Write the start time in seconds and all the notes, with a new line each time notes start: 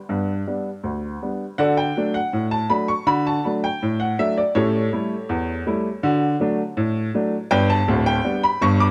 Already playing: B4 D5 G5
0.09 G2 B3
0.47 G3 B3 D4
0.84 D2
1.22 G3 B3 D4
1.58 D3 F#4 A4 D5 F#5
1.77 G5
1.97 F#3 A3 D4
2.14 F#5
2.33 A2
2.51 A5
2.70 F#3 A3 D4 B5
2.88 C#6
3.07 D3 F#4 B5
3.27 A5
3.45 F#3 A3 D4
3.64 G5
3.82 A2
4.00 F#5
4.19 F#3 A3 D4 E5
4.38 D5
4.55 A2 C#4 G4 A4 C#5
4.93 G3 A3 E4
5.29 E2
5.67 G3 A3 E4
6.03 D3 F#4
6.40 F#3 A3 D4
6.77 A2
7.14 F#3 A3 D4
7.51 G1 G2 B4 D5 G5
7.70 A5
7.88 D1 D2
8.06 G5
8.24 G3 B3 D4
8.43 B5
8.61 G1 G2 C#6
8.80 D6